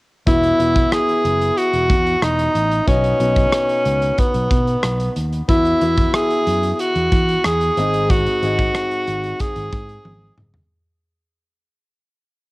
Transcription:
0.27 0.51 E1 medium
0.27 1.21 E3 medium
0.27 0.55 B3 medium
0.27 0.55 E4 medium
0.27 0.94 E4 medium
0.27 0.55 F#4 medium
0.27 0.55 E5 medium
0.27 kick medium
0.27 closed hi-hat medium
0.43 closed hi-hat soft
0.59 0.84 E1 medium
0.59 1.71 B3 medium
0.59 1.72 E4 medium
0.59 1.72 F#4 medium
0.59 1.72 E5 medium
0.59 closed hi-hat medium
0.76 kick medium
0.76 closed hi-hat soft
0.92 1.59 G#4 medium
0.92 cross-stick medium
0.92 closed hi-hat medium
1.09 closed hi-hat soft
1.25 1.49 F#1 medium
1.25 closed hi-hat medium
1.41 closed hi-hat soft
1.57 2.24 F#4 loud
1.57 closed hi-hat medium
1.73 1.91 E1 medium
1.73 closed hi-hat soft
1.90 2.14 E2 medium
1.90 kick medium
1.90 closed hi-hat medium
2.07 closed hi-hat soft
2.22 2.47 E1 medium
2.22 2.87 D#4 medium
2.22 cross-stick medium
2.22 closed hi-hat medium
2.39 closed hi-hat medium
2.55 2.79 A1 medium
2.55 closed hi-hat medium
2.72 closed hi-hat soft
2.87 3.12 B1 medium
2.87 3.82 B2 medium
2.87 3.15 B3 medium
2.87 4.20 C#4 medium
2.87 3.16 D#4 medium
2.87 3.16 F#4 medium
2.87 3.16 D#5 medium
2.87 kick medium
2.87 closed hi-hat medium
3.04 closed hi-hat soft
3.19 3.45 B1 medium
3.19 4.32 B3 medium
3.19 4.32 D#4 medium
3.19 4.32 F#4 medium
3.19 4.33 D#5 medium
3.19 closed hi-hat medium
3.36 kick medium
3.36 closed hi-hat soft
3.53 cross-stick loud
3.53 closed hi-hat medium
3.69 closed hi-hat soft
3.85 4.10 C#2 medium
3.85 closed hi-hat medium
4.02 closed hi-hat soft
4.18 5.16 B3 medium
4.18 kick medium
4.18 closed hi-hat medium
4.34 4.47 B1 medium
4.34 closed hi-hat soft
4.51 4.75 B2 medium
4.51 kick medium
4.51 closed hi-hat medium
4.67 closed hi-hat soft
4.83 5.08 B1 medium
4.83 cross-stick medium
4.83 closed hi-hat medium
5.00 closed hi-hat medium
5.16 5.41 D#2 medium
5.16 closed hi-hat medium
5.33 closed hi-hat soft
5.48 5.73 E2 loud
5.48 6.43 E3 medium
5.48 5.76 B3 medium
5.48 5.77 E4 medium
5.48 6.16 E4 medium
5.48 5.77 F#4 medium
5.48 5.77 E5 medium
5.48 kick medium
5.48 closed hi-hat medium
5.65 closed hi-hat soft
5.81 6.06 E2 loud
5.81 6.93 B3 medium
5.81 6.94 E4 medium
5.81 6.94 F#4 medium
5.81 6.94 E5 medium
5.81 closed hi-hat medium
5.97 kick medium
5.97 closed hi-hat soft
6.14 6.73 G#4 medium
6.14 cross-stick loud
6.14 closed hi-hat medium
6.30 closed hi-hat soft
6.47 6.71 F#2 medium
6.47 closed hi-hat medium
6.63 closed hi-hat soft
6.73 6.81 G#4 medium
6.79 7.47 F#4 medium
6.79 closed hi-hat medium
6.95 7.08 E2 medium
6.95 closed hi-hat soft
7.12 7.36 E3 medium
7.12 kick medium
7.12 closed hi-hat medium
7.28 closed hi-hat soft
7.44 7.69 E2 medium
7.44 8.12 G#4 loud
7.44 cross-stick loud
7.44 closed hi-hat medium
7.61 closed hi-hat medium
7.77 8.26 G#1 medium
7.77 8.71 G#2 medium
7.77 8.33 C4 medium
7.77 8.33 D#4 medium
7.77 8.34 G#4 medium
7.77 8.34 D#5 medium
7.77 closed hi-hat medium
7.94 closed hi-hat soft
8.10 9.42 F#4 loud
8.10 kick medium
8.10 closed hi-hat medium
8.26 closed hi-hat soft
8.42 8.67 G#1 medium
8.42 9.54 C4 medium
8.42 9.55 D#4 medium
8.42 9.55 G#4 medium
8.42 9.55 D#5 medium
8.42 closed hi-hat medium
8.59 kick medium
8.59 closed hi-hat soft
8.75 cross-stick loud
8.75 closed hi-hat medium
8.91 closed hi-hat soft
9.07 9.32 G#1 medium
9.07 closed hi-hat medium
9.24 closed hi-hat medium
9.40 10.38 G#4 medium
9.40 kick medium
9.40 closed hi-hat medium
9.56 9.68 G#1 medium
9.56 closed hi-hat soft
9.73 9.97 G#2 medium
9.73 kick medium
9.73 closed hi-hat medium
9.89 closed hi-hat soft
10.05 10.30 G#1 medium
10.05 high tom medium
10.38 10.62 F#1 medium
10.38 mid tom medium
10.54 floor tom medium

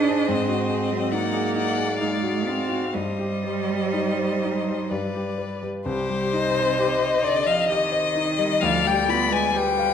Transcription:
0.00 0.26 G#2 medium
0.00 0.31 G#3 medium
0.00 0.31 D4 medium
0.00 0.32 D#4 medium
0.00 0.09 G#4 medium
0.00 1.14 C5 medium
0.00 1.13 D#5 medium
0.09 0.29 G#4 medium
0.29 2.89 G#2 medium
0.29 1.13 C4 medium
0.49 0.82 F#4 medium
0.70 1.03 G#4 medium
0.90 1.25 F#3 soft
1.12 1.99 A#3 medium
1.12 1.46 D#4 medium
1.12 2.92 D5 medium
1.12 1.55 F#5 medium
1.32 1.68 G#4 medium
1.55 1.91 D#4 medium
1.55 1.99 F#5 medium
1.77 2.13 G#4 soft
2.00 2.48 G#3 medium
2.00 2.36 D#4 medium
2.00 2.95 F5 medium
2.23 2.60 F#4 soft
2.46 2.96 C4 medium
2.46 2.84 D#4 soft
2.69 2.93 F#4 soft
2.93 4.88 G2 medium
2.93 5.40 G3 medium
2.93 4.87 C5 medium
2.93 4.92 D#5 medium
3.19 3.59 G4 soft
3.44 3.84 C5 soft
3.70 4.09 G3 soft
3.93 4.33 D#4 soft
4.19 4.58 C5 soft
4.44 4.82 D#4 soft
4.68 4.92 C5 soft
4.91 5.83 G2 medium
4.91 5.64 B4 soft
4.91 5.66 D5 soft
5.15 5.53 G4 soft
5.38 5.77 B4 soft
5.63 5.86 G3 soft
5.86 8.57 C2 medium
5.86 7.25 C3 medium
5.86 6.35 G4 medium
5.86 7.25 C5 medium
6.10 6.47 G3 soft
6.33 6.70 D#4 soft
6.33 8.62 D#5 medium
6.56 6.93 C5 medium
6.79 7.16 G4 medium
7.02 7.38 D#5 soft
7.23 7.47 D3 medium
7.23 7.48 D5 medium
7.23 7.60 C6 medium
7.45 7.67 F3 medium
7.45 7.83 D#5 medium
7.45 7.69 F5 medium
7.68 8.61 D#3 medium
7.68 8.06 G4 medium
7.68 8.62 D#5 medium
7.92 8.29 C5 soft
8.16 8.52 D#4 soft
8.38 8.62 G3 soft
8.59 9.94 D2 medium
8.59 8.86 F3 medium
8.59 9.58 D5 medium
8.59 8.88 F5 medium
8.84 9.08 G3 medium
8.84 9.23 G3 soft
8.84 9.11 G5 medium
9.06 9.31 B3 medium
9.06 9.46 F4 soft
9.06 9.34 B5 medium
9.29 9.53 G#3 medium
9.29 9.69 B4 medium
9.29 9.58 G#5 medium
9.51 9.94 G3 medium
9.51 9.92 G4 medium
9.56 9.94 B4 medium
9.56 9.94 G5 loud
9.78 9.94 F5 medium

